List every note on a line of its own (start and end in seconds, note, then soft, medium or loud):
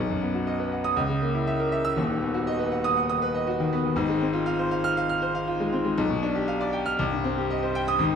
0.00 0.94 B1 loud
0.10 0.30 F#2 medium
0.22 0.42 B3 medium
0.34 0.55 F#4 medium
0.47 0.67 D#5 medium
0.59 0.80 B4 medium
0.72 0.92 F#5 medium
0.84 0.97 D#6 loud
0.96 1.94 C#2 loud
1.09 1.30 C#3 medium
1.22 1.42 A#3 medium
1.34 1.55 E4 medium
1.47 1.68 E5 medium
1.60 1.80 A#4 medium
1.72 1.92 E5 medium
1.85 1.97 E6 loud
1.96 3.92 D#1 medium
1.96 3.93 D#2 loud
2.10 2.30 D#3 medium
2.21 2.42 B3 medium
2.34 2.54 F#4 medium
2.47 2.67 D#5 medium
2.59 2.79 B4 medium
2.72 2.92 F#5 medium
2.84 3.04 D#6 loud
2.97 3.17 F#5 medium
3.09 3.30 D#6 loud
3.22 3.42 B4 medium
3.35 3.55 D#5 medium
3.47 3.67 F#4 medium
3.60 3.80 D#3 medium
3.73 3.92 B3 medium
3.85 3.97 D#3 medium
3.96 5.93 G#1 loud
3.96 5.93 G#2 loud
4.09 4.29 G#3 medium
4.21 4.41 C4 medium
4.33 4.53 F4 medium
4.46 4.66 F5 medium
4.59 4.79 C5 medium
4.71 4.91 F5 medium
4.84 5.04 F6 loud
4.97 5.17 F5 loud
5.09 5.30 F6 loud
5.22 5.42 C5 medium
5.35 5.55 F5 medium
5.47 5.67 F4 medium
5.60 5.80 G#3 medium
5.72 5.92 C4 medium
5.85 5.97 G#3 medium
5.98 6.96 B1 loud
6.10 6.30 B2 medium
6.23 6.43 D4 medium
6.35 6.55 G4 medium
6.48 6.68 F5 medium
6.61 6.81 D5 medium
6.73 6.94 G5 medium
6.86 6.99 F6 loud
6.99 7.98 C2 loud
7.12 7.32 G2 medium
7.24 7.45 C4 medium
7.38 7.58 G4 medium
7.50 7.71 D#5 medium
7.63 7.83 C5 medium
7.75 7.96 G5 loud
7.88 8.01 D#6 loud
7.99 8.15 G#1 loud
7.99 8.15 G#2 loud